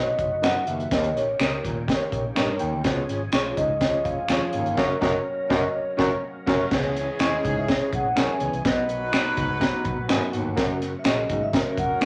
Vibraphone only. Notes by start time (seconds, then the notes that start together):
Already playing: D#5
0.19 D#5
0.44 F#5
0.67 E5
0.92 D#5
1.17 C#5
3.57 D#5
4.04 F5
4.52 F5
4.77 C#5
4.98 C#5 D#5
5.49 D#5
5.74 C#5
7.23 D#5
7.58 E5
7.95 F#5
8.18 G#5
8.65 D#5
10.99 E5
11.07 D#5
11.43 E5
11.79 F#5